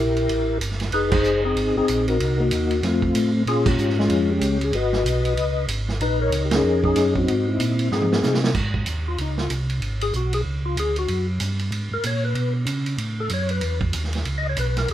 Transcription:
Already playing: tonewheel organ A#1 E4 G4 A#4
0.17 ride
0.29 tonewheel organ A1, ride
0.60 tonewheel organ G1, hi-hat pedal, ride
0.71 snare
0.80 snare, ride
0.92 tonewheel organ F1 D#4 G#4 B4, ride
1.11 tonewheel organ D#4 G#4 C5, kick, crash
1.24 tonewheel organ F#1, hi-hat pedal
1.45 tonewheel organ C4 D#4 G#4
1.55 tonewheel organ G#1, ride
1.75 tonewheel organ G#1 C4 D#4 G#4
1.88 tonewheel organ A#1, hi-hat pedal, ride
2.08 tonewheel organ D#4 F#4 A#4, ride
2.20 tonewheel organ C2, ride
2.39 tonewheel organ A#3 D#4 F#4
2.51 tonewheel organ D#2, hi-hat pedal, ride
2.71 ride
2.83 tonewheel organ F2 A3 C4 F4, snare, ride
3.02 kick
3.14 tonewheel organ A2, hi-hat pedal, ride
3.46 tonewheel organ A#2 C#4 F4 G#4, ride
3.66 tonewheel organ C#4 G4, kick, crash
3.78 tonewheel organ G#2, hi-hat pedal
3.89 snare
3.99 tonewheel organ G#3 C#4 F4, snare
4.10 tonewheel organ F2, ride
4.31 tonewheel organ C#4 G4
4.41 tonewheel organ C#2, hi-hat pedal, ride
4.61 tonewheel organ G#4, ride
4.73 tonewheel organ G#1 F#4 B4 D#5, ride
4.93 snare
5.03 tonewheel organ B1, hi-hat pedal, ride
5.25 ride
5.35 tonewheel organ C#2, ride
5.68 tonewheel organ G#1, hi-hat pedal, ride
5.88 snare
5.99 tonewheel organ A#1 D#4 B4, ride
6.21 tonewheel organ A#4 C#5
6.31 tonewheel organ C#2, hi-hat pedal, ride
6.45 tonewheel organ G4
6.51 tonewheel organ C#4 D#4 G#4, snare, ride
6.63 tonewheel organ F2
6.84 tonewheel organ C#4 D#4 G#4, kick
6.96 tonewheel organ F#2, snare, hi-hat pedal, ride
7.15 tonewheel organ C4 D#4 F#4, kick
7.27 tonewheel organ G#2, ride
7.48 tonewheel organ C4 E4
7.59 tonewheel organ A#2, hi-hat pedal, ride
7.79 ride
7.91 tonewheel organ G#2 C4 D#4 G#4, snare
8.02 high tom
8.12 snare
8.23 tonewheel organ C3, snare, hi-hat pedal
8.34 snare
8.44 snare
8.54 tonewheel organ G#2, kick, crash
8.74 kick
8.86 tonewheel organ D#2, hi-hat pedal, ride
9.08 tonewheel organ F4
9.18 tonewheel organ C#2 D#4, ride
9.38 tonewheel organ F4, snare
9.49 tonewheel organ C2, hi-hat pedal, ride
9.70 ride
9.81 tonewheel organ G#1, ride
10.01 tonewheel organ G#4, ride
10.13 tonewheel organ B1 F#4, hi-hat pedal
10.33 tonewheel organ G#4, ride
10.45 tonewheel organ C#2
10.66 tonewheel organ F4
10.76 tonewheel organ D2 G#4, hi-hat pedal, ride
10.96 tonewheel organ F#4, ride
11.08 tonewheel organ F#2, ride
11.40 tonewheel organ G2, hi-hat pedal, ride
11.59 ride
11.71 tonewheel organ G#2, ride
11.91 tonewheel organ G#2 A#4
12.03 tonewheel organ A#2 C#5, hi-hat pedal, ride
12.25 tonewheel organ B4
12.35 tonewheel organ B2, ride
12.65 tonewheel organ C#3, hi-hat pedal, ride
12.86 ride
12.97 tonewheel organ A2, ride
13.20 tonewheel organ A4
13.29 tonewheel organ F#2, hi-hat pedal, ride
13.34 tonewheel organ C#5
13.49 tonewheel organ B4, ride
13.61 tonewheel organ E2, ride
13.81 kick
13.93 tonewheel organ D#2, hi-hat pedal, ride
14.04 snare
14.13 snare, ride
14.25 tonewheel organ C#2, ride
14.38 tonewheel organ D#5
14.49 tonewheel organ C#5
14.56 tonewheel organ B1 B4, hi-hat pedal, ride
14.77 tonewheel organ A#4, snare, ride
14.88 tonewheel organ D#2, ride

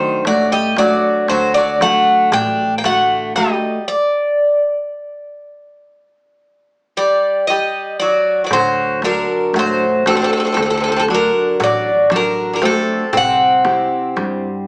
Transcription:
Already playing: bouzouki D#3 C5, steel-string acoustic guitar F#3 A3 D4 F#4
0.25 upright bass A1, bouzouki F#3 D5, steel-string acoustic guitar A3, darbuka tek
0.52 bouzouki G3 D#5
0.77 bouzouki F#3 D5, steel-string acoustic guitar A3 D4 F#4, darbuka tek
1.28 upright bass D2, steel-string acoustic guitar D3, bouzouki F#3 C5, darbuka tek
1.54 bouzouki F#3 D5
1.80 steel-string acoustic guitar F#3 A3 D4, bouzouki A3 F#5, darbuka tek
2.07 darbuka tek
2.32 upright bass A1, steel-string acoustic guitar A3, bouzouki D4 G5, darbuka dum
2.78 bouzouki A#3 G5
2.84 steel-string acoustic guitar D3 A3 F#4, bouzouki A3 F#5, darbuka tek
3.36 bouzouki G3 D#5, steel-string acoustic guitar A3 F#4, darbuka tek
3.88 bouzouki D5
6.97 bouzouki G3 D5
7.47 bouzouki G3 D#5
8.00 bouzouki F#3 D5
8.44 bouzouki F#3 D5
8.51 upright bass D2, steel-string acoustic guitar D3, bouzouki F#3 C5, darbuka dum
9.02 bouzouki D3 A#4, steel-string acoustic guitar F#3 D4 F#4, darbuka tek
9.53 upright bass A1, bouzouki F#3, steel-string acoustic guitar A3, darbuka tek
9.59 bouzouki C5
10.06 bouzouki C3 A4, steel-string acoustic guitar A3 D4 F#4, darbuka tek
10.15 bouzouki C3 A4
10.22 bouzouki C3 A4
10.29 bouzouki C3 A4, darbuka tek
10.37 bouzouki C3 A4
10.45 bouzouki C3 A4
10.52 bouzouki C3 A4
10.57 upright bass D2, bouzouki C3, steel-string acoustic guitar D3, darbuka tek
10.62 bouzouki C3 A4
10.70 bouzouki C3 A4
10.77 bouzouki C3 A4
10.84 bouzouki A4
10.88 bouzouki C3 A4
10.96 bouzouki C3 A4
11.08 bouzouki D3, steel-string acoustic guitar F#3 D4 F#4, darbuka tek
11.14 bouzouki A#4
11.60 upright bass A1, bouzouki F#3 D5, darbuka dum
12.10 bouzouki D3, steel-string acoustic guitar F#3 D4 F#4, darbuka tek
12.16 bouzouki A#4
12.53 bouzouki D3 A#4
12.62 bouzouki C3 A4, steel-string acoustic guitar A3 D4 F#4, darbuka tek
13.13 upright bass C2, steel-string acoustic guitar C3, bouzouki C4, darbuka dum
13.17 bouzouki F#5
13.65 steel-string acoustic guitar C4 E4 G4, darbuka tek
14.16 upright bass G2, steel-string acoustic guitar G3, darbuka tek

